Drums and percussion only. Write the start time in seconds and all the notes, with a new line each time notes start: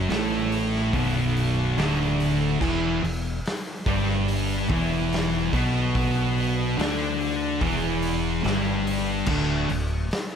0.10 snare, open hi-hat
0.52 open hi-hat
0.75 snare
0.93 kick, open hi-hat
1.37 open hi-hat
1.78 snare, open hi-hat
2.20 open hi-hat
2.61 kick, crash
3.04 open hi-hat
3.46 snare, open hi-hat
3.86 kick, open hi-hat
4.09 snare
4.28 open hi-hat
4.70 kick, open hi-hat
5.12 snare, open hi-hat
5.53 kick, open hi-hat
5.95 kick, open hi-hat
6.38 open hi-hat
6.79 snare, open hi-hat
7.20 open hi-hat
7.61 kick, open hi-hat
8.02 open hi-hat
8.44 snare, open hi-hat
8.87 open hi-hat
9.26 kick, crash
9.69 open hi-hat
10.11 snare, open hi-hat